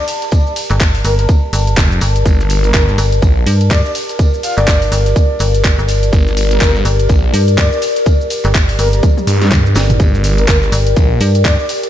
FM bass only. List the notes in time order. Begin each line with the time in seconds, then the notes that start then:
0.71 G1
1.05 G1
1.53 G1
2.01 G1
2.98 G1
3.47 G2
4.58 G1
4.92 G1
5.40 G1
5.79 G1
6.85 G1
7.34 G2
8.45 G1
8.79 G1
9.76 G1
10.72 G1
11.21 G2